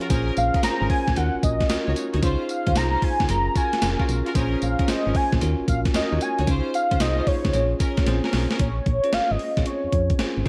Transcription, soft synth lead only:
0.38 0.62 F5 loud
0.64 0.88 A#5 loud
0.90 1.18 G#5 loud
1.17 1.43 F#5 medium
1.44 1.93 D#5 medium
2.50 2.78 F5 loud
2.77 3.05 A#5 loud
3.04 3.29 G#5 loud
3.30 3.58 A#5 loud
3.57 4.09 G#5 loud
4.63 4.85 F5 medium
4.85 4.91 F5 medium
4.89 5.17 D#5 loud
5.16 5.42 G#5 medium
5.69 5.80 F5 medium
5.95 6.23 D#5 medium
6.22 6.48 G#5 loud
6.75 6.99 F5 loud
7.01 7.29 D#5 loud
7.27 8.07 C#5 loud
8.61 9.15 C#5 loud
9.13 9.33 F5 loud
9.31 9.66 D#5 loud
9.67 10.42 C#5 medium

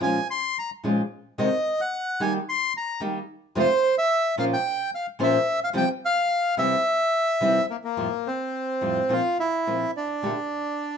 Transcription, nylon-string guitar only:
0.01 0.18 A#2 medium
0.01 0.18 F3 medium
0.01 0.18 G#3 medium
0.01 0.18 C#4 medium
0.01 0.18 F4 medium
0.84 1.00 A#2 medium
0.84 1.00 F3 medium
0.84 1.01 G#3 medium
0.84 1.01 C#4 medium
0.84 1.01 F4 medium
1.38 1.47 C3 medium
1.38 1.47 D#3 medium
1.38 1.47 G#3 medium
1.38 1.48 C4 medium
1.38 1.48 F#4 medium
2.20 2.37 D#3 medium
2.20 2.37 G3 medium
2.20 2.37 A#3 medium
2.20 2.37 D#4 medium
2.20 2.37 G4 medium
3.00 3.18 D#3 medium
3.00 3.18 G3 medium
3.00 3.18 A#3 medium
3.00 3.18 D#4 medium
3.00 3.18 G4 medium
3.55 3.65 F2 medium
3.55 3.65 C3 medium
3.55 3.65 F3 medium
3.55 3.65 A3 medium
3.55 3.65 C4 medium
3.55 3.65 F4 medium
4.37 4.54 A#2 medium
4.37 4.54 F3 medium
4.37 4.55 A#3 medium
4.37 4.55 C#4 medium
4.37 4.55 F4 medium
4.37 4.55 C5 medium
5.19 5.36 A#2 medium
5.19 5.37 F3 medium
5.19 5.37 A#3 medium
5.19 5.37 C#4 medium
5.19 5.37 F4 medium
5.19 5.37 C5 medium
5.73 5.83 C3 medium
5.73 5.83 F3 medium
5.73 5.83 G3 medium
5.73 5.84 C4 medium
5.73 5.84 F4 medium
6.57 6.74 C3 medium
6.57 6.74 E3 medium
6.57 6.75 G3 medium
6.57 6.75 C4 medium
6.57 6.75 E4 medium
7.41 7.58 C3 medium
7.41 7.58 E3 medium
7.41 7.59 G3 medium
7.41 7.59 C4 medium
7.41 7.59 E4 medium
7.97 8.07 F2 medium
7.97 8.07 A2 medium
7.97 8.07 F3 medium
7.97 8.07 G3 medium
7.97 8.07 C4 medium
7.97 8.07 F4 medium
8.81 8.99 F2 medium
8.81 8.99 A2 medium
8.81 8.99 F3 medium
8.81 8.99 G3 medium
8.81 9.00 C4 medium
8.81 9.00 F4 medium
9.09 9.19 A#2 medium
9.09 9.19 F3 medium
9.09 9.19 A#3 medium
9.09 9.19 C4 medium
9.09 9.20 F4 medium
9.67 9.84 A#2 medium
9.67 9.84 F3 soft
9.67 9.84 A#3 medium
9.67 9.84 C4 medium
9.67 9.84 F4 medium
10.22 10.32 A#2 medium
10.22 10.32 D3 medium
10.22 10.32 A3 medium
10.22 10.32 D4 medium
10.22 10.32 G4 medium

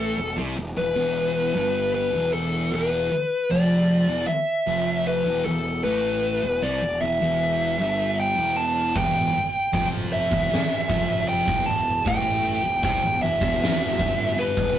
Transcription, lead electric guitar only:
0.00 0.34 A4 medium
0.77 1.91 B4 medium
1.95 2.31 B4 medium
2.33 2.74 A4 medium
2.75 3.48 B4 medium
3.51 4.27 D5 medium
4.27 5.08 E5 medium
5.07 5.45 B4 medium
5.45 5.81 A4 medium
5.84 6.64 B4 medium
6.63 7.01 D5 medium
7.01 8.19 E5 medium
8.20 8.55 G5 loud
8.57 8.97 A5 medium
8.96 9.70 G5 medium
9.74 9.85 G5 medium
10.13 11.28 E5 loud
11.29 11.68 G5 medium
11.66 12.06 A5 medium
12.07 12.82 G5 loud
12.83 13.22 G5 medium
13.22 14.42 E5 medium
14.39 14.78 B4 medium

